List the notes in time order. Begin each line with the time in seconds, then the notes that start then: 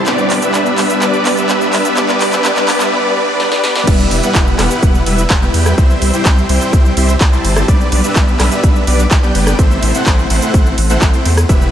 0.06 G3 B3 D4 B4 D5, clap, closed hi-hat, shaker
0.18 closed hi-hat, shaker
0.30 clap, open hi-hat
0.42 G3 B3 D4 B4 E5, closed hi-hat, shaker
0.54 clap, closed hi-hat, shaker
0.66 closed hi-hat, shaker
0.78 G3 B3 D4 B4 E5, clap, open hi-hat
0.90 closed hi-hat, shaker
1.02 G3 B3 D4 B4 D5, clap, closed hi-hat, shaker
1.13 closed hi-hat, shaker
1.25 clap, open hi-hat
1.37 G3 B3 D4 B4 E5, closed hi-hat, shaker
1.49 clap, closed hi-hat, shaker
1.61 closed hi-hat, shaker
1.73 G3 B3 D4 B4 E5, clap, open hi-hat
1.85 closed hi-hat, shaker
1.97 G3 B3 D4 B4 D5, clap, closed hi-hat, shaker
2.09 clap, closed hi-hat, shaker
2.21 clap, open hi-hat
2.32 G3 B3 D4 B4 E5, clap, closed hi-hat, shaker
2.44 G3 B3 D4 B4 D5, clap, closed hi-hat, shaker
2.56 clap, closed hi-hat, shaker
2.68 clap, open hi-hat
2.80 G3 B3 D4 B4 E5, clap, closed hi-hat, shaker
2.92 G3 B3 D4 B4 D5
3.16 G3 B3 D4 B4 D5
3.39 G3 B3 D4 B4 D5, snare
3.52 snare
3.63 G3 B3 D4 B4 D5, snare
3.75 snare
3.87 E1 G3 B3 E4 B4 E5, kick, closed hi-hat, crash, shaker
4.00 shaker
4.11 E1, open hi-hat, ride
4.23 G3 B3 E4 B4 F#5, closed hi-hat, shaker
4.35 E1, kick, clap, closed hi-hat, shaker
4.47 shaker
4.59 E1 G3 B3 E4 B4 F#5, cross-stick, clap, open hi-hat, ride
4.71 closed hi-hat, shaker
4.83 E1, kick, closed hi-hat, shaker
4.95 shaker
5.06 E1 G3 B3 E4 B4 E5, open hi-hat, ride
5.18 closed hi-hat, shaker
5.30 E1, kick, clap, closed hi-hat, shaker
5.42 G3 B3 E4 B4 G5, shaker
5.54 E2, open hi-hat, ride
5.66 cross-stick, closed hi-hat, shaker
5.78 C2 G3 C4 E4 C5 E5, kick, closed hi-hat, shaker
5.90 shaker
6.02 C2, open hi-hat, ride
6.13 G3 C4 E4 C5 G5, closed hi-hat, shaker
6.25 C2, kick, clap, closed hi-hat, shaker
6.38 shaker
6.49 C2 G3 C4 E4 C5 G5, open hi-hat, ride
6.61 closed hi-hat, shaker
6.73 C2, kick, closed hi-hat, shaker
6.85 shaker
6.97 C2 G3 C4 E4 C5 E5, open hi-hat, ride
7.09 closed hi-hat, shaker
7.21 C2, kick, clap, closed hi-hat, shaker
7.32 G3 C4 E4 C5 A5, shaker
7.45 G1, open hi-hat, ride
7.56 cross-stick, closed hi-hat, shaker
7.68 B1 G3 B3 D4 B4 D5, kick, closed hi-hat, shaker
7.80 shaker
7.92 B1, open hi-hat, ride
8.04 G3 B3 D4 B4 E5, closed hi-hat, shaker
8.16 B1, kick, clap, closed hi-hat, shaker
8.28 shaker
8.40 B1 G3 B3 D4 B4 E5, cross-stick, clap, open hi-hat, ride
8.52 closed hi-hat, shaker
8.63 B1, kick, closed hi-hat, shaker
8.76 shaker
8.87 B1 G3 B3 D4 B4 D5, open hi-hat, ride
8.99 closed hi-hat, shaker
9.11 B1, kick, clap, closed hi-hat, shaker
9.23 G3 B3 D4 B4 G5, shaker
9.35 F#1, open hi-hat, ride
9.47 cross-stick, closed hi-hat, shaker
9.59 A1 A3 C4 E4 C5 E5, kick, closed hi-hat, shaker
9.71 shaker
9.83 A1, open hi-hat, ride
9.94 A3 C4 E4 C5 F#5, closed hi-hat, shaker
10.06 A1, kick, clap, closed hi-hat, shaker
10.19 shaker
10.30 A1 A3 C4 E4 C5 F#5, open hi-hat, ride
10.42 closed hi-hat, shaker
10.54 A1, kick, closed hi-hat, shaker
10.66 shaker
10.78 A1, open hi-hat, ride
10.90 A3 C4 E4 C5 F#5, closed hi-hat, shaker
11.02 A1, kick, clap, closed hi-hat, shaker
11.14 A3 C4 E4 C5 G5, closed hi-hat, shaker
11.25 E2, open hi-hat, ride
11.37 cross-stick, closed hi-hat, shaker
11.49 E1 G3 B3 E4 B4 E5, kick, closed hi-hat, shaker
11.62 shaker